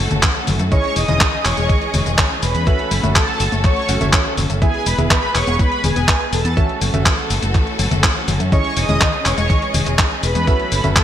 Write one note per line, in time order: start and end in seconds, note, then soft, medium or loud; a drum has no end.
0.00 6.53 E3 medium
0.00 0.70 A3 medium
0.00 0.70 C#4 medium
0.00 0.70 F#4 medium
0.00 0.70 A4 medium
0.11 0.21 F#1 medium
0.11 0.16 A3 loud
0.11 closed hi-hat medium
0.11 high conga medium
0.11 cabasa soft
0.23 0.32 E3 medium
0.23 kick loud
0.23 clap loud
0.23 closed hi-hat medium
0.35 closed hi-hat soft
0.47 0.58 F#1 medium
0.47 0.56 F#3 medium
0.47 open hi-hat loud
0.47 high conga medium
0.47 cabasa medium
0.59 0.70 F#2 medium
0.59 0.65 A3 loud
0.59 closed hi-hat medium
0.59 cabasa soft
0.72 0.80 D#3 medium
0.72 2.65 G#3 medium
0.72 1.05 C#4 medium
0.72 4.58 C#4 medium
0.72 1.05 E4 medium
0.72 2.65 G#4 medium
0.72 1.05 G#4 medium
0.72 0.95 C#5 medium
0.72 1.05 D#5 medium
0.72 2.65 D#5 medium
0.72 0.97 C#6 loud
0.72 kick loud
0.72 closed hi-hat medium
0.72 cabasa soft
0.84 closed hi-hat soft
0.96 1.06 E1 loud
0.96 1.05 E3 medium
0.96 1.42 D#5 loud
0.96 1.46 D#6 loud
0.96 open hi-hat loud
0.96 cabasa medium
1.08 1.19 E1 medium
1.08 1.14 G#3 loud
1.08 1.22 C#4 medium
1.08 1.22 E4 medium
1.08 1.22 G#4 medium
1.08 1.22 D#5 medium
1.08 closed hi-hat medium
1.08 high conga medium
1.08 cabasa soft
1.21 1.29 D#3 medium
1.21 kick loud
1.21 clap loud
1.21 closed hi-hat medium
1.21 cabasa soft
1.33 closed hi-hat soft
1.45 1.55 E1 loud
1.45 1.54 E3 medium
1.45 2.15 C#5 medium
1.45 2.14 C#6 loud
1.45 clap medium
1.45 open hi-hat loud
1.45 cabasa medium
1.57 1.67 E1 medium
1.57 1.62 G#3 loud
1.57 closed hi-hat medium
1.57 cabasa soft
1.69 1.78 D#3 medium
1.69 kick loud
1.69 closed hi-hat soft
1.69 cabasa soft
1.82 closed hi-hat soft
1.94 2.04 E1 medium
1.94 2.02 E3 medium
1.94 open hi-hat loud
1.94 high conga medium
1.94 cabasa medium
2.06 2.16 E1 medium
2.06 2.11 G#3 loud
2.06 closed hi-hat medium
2.06 cabasa soft
2.18 2.27 D#3 medium
2.18 kick loud
2.18 clap loud
2.18 closed hi-hat medium
2.30 closed hi-hat soft
2.43 2.53 E1 loud
2.43 2.51 E3 medium
2.43 3.12 B4 medium
2.43 3.12 B5 loud
2.43 open hi-hat loud
2.43 cabasa medium
2.55 2.65 E2 medium
2.55 2.60 G#3 loud
2.55 closed hi-hat medium
2.55 cabasa soft
2.67 2.76 E3 medium
2.67 4.60 A3 medium
2.67 3.01 C#4 medium
2.67 3.01 F#4 medium
2.67 4.60 F#4 medium
2.67 3.01 A4 medium
2.67 4.60 A4 medium
2.67 3.01 E5 medium
2.67 kick loud
2.67 closed hi-hat medium
2.67 cabasa soft
2.79 closed hi-hat soft
2.91 3.01 F#1 medium
2.91 3.00 F#3 medium
2.91 open hi-hat loud
2.91 cabasa medium
3.03 3.14 F#1 medium
3.03 3.09 A3 loud
3.03 3.17 C#4 medium
3.03 3.17 F#4 medium
3.03 3.17 A4 medium
3.03 3.17 E5 medium
3.03 closed hi-hat soft
3.03 high conga medium
3.03 cabasa soft
3.16 3.24 E3 medium
3.16 3.62 A4 medium
3.16 3.61 A5 loud
3.16 kick loud
3.16 clap loud
3.16 closed hi-hat medium
3.28 closed hi-hat soft
3.40 3.50 F#1 loud
3.40 3.49 F#3 medium
3.40 open hi-hat loud
3.40 cabasa medium
3.52 3.62 F#1 medium
3.52 3.57 A3 loud
3.52 closed hi-hat medium
3.52 cabasa soft
3.64 3.73 E3 medium
3.64 4.34 C#5 medium
3.64 4.33 C#6 loud
3.64 kick loud
3.64 clap soft
3.64 closed hi-hat soft
3.64 cabasa soft
3.76 closed hi-hat soft
3.89 3.99 F#1 medium
3.89 3.97 F#3 medium
3.89 3.98 C#4 loud
3.89 3.98 F#4 medium
3.89 3.98 A4 medium
3.89 3.98 F#5 loud
3.89 open hi-hat loud
3.89 cabasa medium
4.01 4.11 F#1 medium
4.01 4.06 A3 loud
4.01 4.59 C#4 medium
4.01 4.59 F#4 medium
4.01 4.59 A4 medium
4.01 4.59 E5 medium
4.01 closed hi-hat medium
4.01 high conga medium
4.01 cabasa soft
4.13 4.22 E3 medium
4.13 kick loud
4.13 clap loud
4.13 closed hi-hat medium
4.25 closed hi-hat soft
4.37 4.48 F#1 loud
4.37 4.46 F#3 medium
4.37 open hi-hat loud
4.37 high conga medium
4.37 cabasa medium
4.50 4.60 F#1 medium
4.50 4.55 A3 loud
4.50 closed hi-hat medium
4.50 cabasa soft
4.62 4.71 E3 medium
4.62 6.55 G#3 medium
4.62 6.55 B3 medium
4.62 4.96 B3 medium
4.62 4.96 E4 medium
4.62 6.55 G#4 medium
4.62 4.96 G#4 medium
4.62 4.85 G#4 medium
4.62 6.55 B4 medium
4.62 4.96 E5 medium
4.62 4.87 G#5 loud
4.62 kick loud
4.62 closed hi-hat medium
4.62 cabasa soft
4.74 closed hi-hat soft
4.86 4.96 E1 medium
4.86 4.95 G#3 medium
4.86 4.98 B4 medium
4.86 4.97 B5 loud
4.86 open hi-hat loud
4.86 cabasa medium
4.98 5.09 E1 medium
4.98 5.12 B3 medium
4.98 5.04 B3 loud
4.98 5.12 E4 medium
4.98 5.12 G#4 medium
4.98 5.12 E5 medium
4.98 closed hi-hat soft
4.98 high conga medium
4.98 cabasa soft
5.11 5.19 E3 medium
5.11 5.34 B4 medium
5.11 5.34 B5 loud
5.11 kick loud
5.11 clap loud
5.11 closed hi-hat medium
5.11 cabasa soft
5.23 closed hi-hat soft
5.35 5.45 E1 loud
5.35 5.44 G#3 medium
5.35 5.58 C#5 medium
5.35 5.58 C#6 loud
5.35 clap medium
5.35 open hi-hat loud
5.35 cabasa medium
5.47 5.57 E1 medium
5.47 5.53 B3 loud
5.47 closed hi-hat medium
5.47 cabasa soft
5.59 5.68 E3 medium
5.59 5.83 B4 medium
5.59 5.82 B5 loud
5.59 kick loud
5.59 closed hi-hat soft
5.59 cabasa soft
5.72 closed hi-hat soft
5.84 5.94 E1 medium
5.84 5.93 G#3 medium
5.84 6.30 G#4 medium
5.84 6.34 G#5 loud
5.84 open hi-hat loud
5.84 high conga medium
5.84 cabasa medium
5.96 6.06 E1 medium
5.96 6.01 B3 loud
5.96 closed hi-hat soft
5.96 cabasa soft
6.08 6.17 E3 medium
6.08 kick loud
6.08 clap loud
6.08 cabasa soft
6.21 closed hi-hat soft
6.33 6.43 E1 medium
6.33 6.41 G#3 medium
6.33 6.78 A4 medium
6.33 6.78 A5 medium
6.33 open hi-hat loud
6.33 cabasa medium
6.45 6.55 E2 medium
6.45 6.50 B3 loud
6.45 closed hi-hat medium
6.45 cabasa soft
6.57 8.50 E3 medium
6.57 6.66 E3 medium
6.57 8.50 A3 medium
6.57 11.04 C#4 medium
6.57 6.91 C#4 medium
6.57 8.50 F#4 medium
6.57 6.91 F#4 medium
6.57 8.50 A4 medium
6.57 6.91 A4 medium
6.57 6.91 E5 medium
6.57 kick loud
6.57 closed hi-hat medium
6.57 cabasa soft
6.69 closed hi-hat soft
6.81 6.92 F#1 medium
6.81 6.90 F#3 medium
6.81 open hi-hat loud
6.81 cabasa medium
6.94 7.04 F#1 medium
6.94 6.99 A3 loud
6.94 7.07 C#4 medium
6.94 7.07 F#4 medium
6.94 7.07 A4 medium
6.94 7.07 E5 medium
6.94 closed hi-hat soft
6.94 high conga medium
6.94 cabasa soft
7.06 7.15 E3 medium
7.06 kick loud
7.06 clap loud
7.06 closed hi-hat medium
7.06 cabasa soft
7.18 closed hi-hat soft
7.30 7.40 F#1 loud
7.30 7.39 F#3 medium
7.30 open hi-hat loud
7.30 cabasa medium
7.42 7.53 F#1 medium
7.42 7.48 A3 loud
7.42 closed hi-hat medium
7.42 cabasa soft
7.55 7.63 E3 medium
7.55 kick loud
7.55 clap soft
7.55 closed hi-hat medium
7.55 cabasa soft
7.67 closed hi-hat soft
7.79 7.89 F#1 loud
7.79 7.88 F#3 medium
7.79 open hi-hat loud
7.79 cabasa medium
7.91 8.01 F#1 medium
7.91 7.96 A3 loud
7.91 closed hi-hat medium
7.91 high conga medium
7.91 cabasa soft
8.03 8.12 E3 medium
8.03 kick loud
8.03 clap loud
8.16 closed hi-hat soft
8.28 8.38 F#1 loud
8.28 8.36 F#3 medium
8.28 open hi-hat loud
8.28 high conga medium
8.28 cabasa medium
8.40 8.50 F#2 medium
8.40 8.45 A3 loud
8.40 closed hi-hat medium
8.40 cabasa soft
8.52 8.61 D#3 medium
8.52 10.45 E3 medium
8.52 10.45 G#3 medium
8.52 8.86 C#4 medium
8.52 8.86 E4 medium
8.52 10.45 G#4 medium
8.52 8.86 G#4 medium
8.52 8.75 C#5 medium
8.52 10.45 D#5 medium
8.52 8.86 D#5 medium
8.52 8.77 C#6 loud
8.52 kick loud
8.52 closed hi-hat medium
8.52 cabasa soft
8.65 closed hi-hat soft
8.77 8.87 E1 loud
8.77 8.85 E3 medium
8.77 9.22 D#5 medium
8.77 9.27 D#6 loud
8.77 open hi-hat loud
8.77 cabasa medium
8.89 8.99 E1 medium
8.89 8.94 G#3 loud
8.89 9.03 C#4 medium
8.89 9.03 E4 medium
8.89 9.03 G#4 medium
8.89 9.03 D#5 medium
8.89 closed hi-hat medium
8.89 high conga medium
8.89 cabasa soft
9.01 9.10 D#3 medium
9.01 kick loud
9.01 clap loud
9.01 closed hi-hat medium
9.13 closed hi-hat soft
9.25 9.36 E1 loud
9.25 9.34 E3 medium
9.25 9.95 C#5 medium
9.25 9.95 C#6 loud
9.25 clap medium
9.25 open hi-hat loud
9.25 cabasa medium
9.37 9.48 E1 medium
9.37 9.43 G#3 loud
9.37 closed hi-hat medium
9.37 cabasa soft
9.50 9.59 D#3 medium
9.50 kick loud
9.50 closed hi-hat medium
9.50 cabasa soft
9.62 closed hi-hat soft
9.74 9.84 E1 loud
9.74 9.83 E3 medium
9.74 open hi-hat loud
9.74 high conga medium
9.74 cabasa medium
9.86 9.97 E1 medium
9.86 9.92 G#3 loud
9.86 closed hi-hat medium
9.86 cabasa soft
9.99 10.07 D#3 medium
9.99 kick loud
9.99 clap loud
9.99 closed hi-hat medium
9.99 cabasa soft
10.11 closed hi-hat soft
10.23 10.33 E1 medium
10.23 10.32 E3 medium
10.23 10.93 B4 medium
10.23 10.98 B5 loud
10.23 open hi-hat loud
10.23 cabasa medium
10.35 10.45 E2 medium
10.35 10.40 G#3 loud
10.35 closed hi-hat medium
10.35 cabasa soft
10.47 10.56 E3 medium
10.47 11.04 F#3 medium
10.47 11.04 A3 medium
10.47 10.81 C#4 medium
10.47 11.04 E4 medium
10.47 10.81 F#4 medium
10.47 10.81 A4 medium
10.47 11.04 A4 medium
10.47 10.81 E5 medium
10.47 kick loud
10.47 closed hi-hat medium
10.47 cabasa soft
10.60 closed hi-hat soft
10.72 10.82 F#1 medium
10.72 10.80 F#3 medium
10.72 open hi-hat loud
10.72 cabasa medium
10.84 10.94 F#1 medium
10.84 10.89 A3 loud
10.84 10.98 C#4 medium
10.84 10.98 F#4 medium
10.84 10.98 A4 medium
10.84 10.98 E5 medium
10.84 closed hi-hat medium
10.84 high conga medium
10.84 cabasa soft
10.96 11.04 E3 medium
10.96 11.04 A4 medium
10.96 11.04 A5 loud
10.96 kick loud
10.96 clap loud